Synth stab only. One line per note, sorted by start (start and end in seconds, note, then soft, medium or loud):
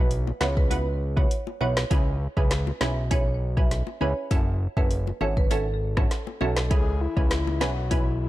0.00 0.37 B3 medium
0.00 0.38 E4 medium
0.00 0.38 F#4 medium
0.00 0.38 B4 medium
0.41 0.69 B3 medium
0.41 0.69 E4 medium
0.41 0.69 F#4 medium
0.41 0.69 B4 medium
0.70 0.86 B3 medium
0.70 0.86 E4 medium
0.70 0.87 F#4 medium
0.70 0.87 B4 loud
1.16 1.57 B3 medium
1.16 1.58 E4 medium
1.16 1.58 F#4 medium
1.16 1.58 B4 medium
1.61 1.89 B3 medium
1.61 1.89 E4 medium
1.61 1.89 F#4 medium
1.61 1.89 B4 loud
1.90 2.33 C#4 loud
1.90 2.33 E4 medium
1.90 2.33 G#4 medium
1.90 2.33 B4 loud
2.37 2.78 C#4 medium
2.37 2.78 E4 medium
2.37 2.78 G#4 medium
2.37 2.78 B4 medium
2.81 3.09 C#4 medium
2.81 3.09 E4 medium
2.81 3.09 G#4 medium
2.81 3.09 B4 medium
3.11 3.26 C#4 medium
3.11 3.27 E4 medium
3.11 3.27 G#4 medium
3.11 3.27 B4 loud
3.57 3.98 C#4 medium
3.57 3.98 E4 medium
3.57 3.98 G#4 medium
3.57 3.98 B4 medium
4.01 4.29 C#4 medium
4.01 4.29 E4 medium
4.01 4.29 G#4 medium
4.01 4.29 B4 medium
4.31 4.73 C#4 loud
4.31 4.73 E4 medium
4.31 4.73 F#4 medium
4.31 4.73 A4 loud
4.77 5.18 C#4 medium
4.77 5.18 E4 medium
4.77 5.18 F#4 medium
4.77 5.18 A4 medium
5.21 5.49 C#4 medium
5.21 5.49 E4 medium
5.21 5.49 F#4 medium
5.21 5.49 A4 medium
5.51 5.67 C#4 loud
5.51 5.67 E4 medium
5.51 5.67 F#4 medium
5.51 5.67 A4 loud
5.97 6.38 C#4 medium
5.97 6.38 E4 medium
5.97 6.38 F#4 medium
5.97 6.38 A4 medium
6.41 6.69 C#4 medium
6.41 6.69 E4 medium
6.41 6.69 F#4 medium
6.41 6.69 A4 medium
6.71 7.13 C#4 loud
6.71 7.13 E4 medium
6.71 7.13 G#4 medium
6.71 7.13 B4 loud
7.16 7.57 C#4 medium
7.16 7.58 E4 medium
7.16 7.58 G#4 medium
7.16 7.58 B4 medium
7.61 7.89 C#4 medium
7.61 7.89 E4 medium
7.61 7.89 G#4 medium
7.61 7.89 B4 medium
7.91 8.07 C#4 loud
7.91 8.07 E4 medium
7.91 8.07 G#4 medium
7.91 8.07 B4 loud